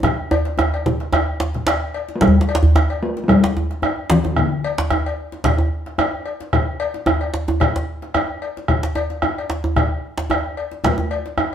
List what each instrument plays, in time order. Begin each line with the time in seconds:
0.03 bombo rim, bombo low, djembe slap, djembe tone, djembe bass
0.20 bombo rim
0.30 cowbell, djembe slap, djembe tone
0.45 bombo rim, djembe slap
0.58 bombo rim, djembe tone
0.73 cowbell, djembe slap
0.86 bombo rim, bombo low, djembe tone
1.00 bombo rim, djembe slap
1.13 bombo rim, cowbell, djembe slap, djembe tone, djembe bass
1.40 djembe slap
1.54 bombo rim, bombo low, djembe slap
1.67 bombo rim, cowbell, djembe slap, djembe tone
1.94 cowbell, djembe slap
2.09 djembe slap
2.15 talking drum A3
2.21 talking drum G3, bombo rim, bombo low, djembe slap, djembe tone, djembe bass
2.28 djembe bass
2.41 djembe slap
2.49 cowbell
2.55 djembe slap
2.63 djembe slap, djembe bass
2.75 bombo rim, djembe slap, djembe tone, djembe bass
2.90 cowbell
3.03 talking drum A3
3.17 djembe slap
3.24 talking drum A3
3.28 talking drum G3, bombo rim, bombo low, cowbell, djembe tone, djembe bass
3.44 djembe slap
3.57 djembe tone
3.71 bombo rim, djembe slap
3.82 bombo rim, cowbell, djembe tone, djembe bass
4.10 talking drum E3, cowbell, djembe slap
4.24 djembe slap, djembe tone
4.31 talking drum E3
4.37 talking drum D3, bombo rim, bombo low, djembe tone, djembe bass
4.64 cowbell
4.78 djembe slap
4.90 bombo rim, djembe tone, djembe bass
5.06 cowbell
5.32 djembe slap
5.44 bombo rim, bombo low, cowbell, djembe slap, djembe tone, djembe bass
5.58 djembe tone
5.86 bombo rim, djembe slap
5.98 bombo rim, cowbell, djembe tone, djembe bass
6.26 cowbell, djembe slap
6.41 djembe slap
6.53 bombo rim, bombo low, djembe tone, djembe bass
6.80 cowbell
6.94 djembe slap
7.06 bombo rim, djembe tone, djembe bass
7.21 cowbell
7.34 djembe slap
7.48 djembe slap, djembe tone
7.60 bombo rim, bombo low, cowbell, djembe tone, djembe bass
7.76 djembe slap
8.02 bombo rim, djembe slap
8.14 bombo rim, cowbell, djembe tone, djembe bass
8.42 cowbell, djembe slap
8.57 djembe slap
8.68 bombo rim, bombo low, djembe tone, djembe bass
8.83 bombo rim, djembe slap
8.95 cowbell, djembe tone
9.10 djembe slap
9.22 bombo rim, djembe slap, djembe tone, djembe bass
9.38 cowbell
9.50 bombo rim, djembe slap
9.64 bombo rim, djembe tone
9.76 bombo rim, bombo low, cowbell, djembe tone, djembe bass
10.18 bombo rim, djembe slap
10.30 bombo rim, cowbell, djembe tone, djembe bass
10.46 bombo rim
10.57 cowbell
10.72 djembe slap
10.84 talking drum A3, bombo rim, bombo low, djembe slap, djembe tone, djembe bass
10.98 djembe tone
11.11 cowbell
11.26 djembe slap
11.37 bombo rim, djembe tone, djembe bass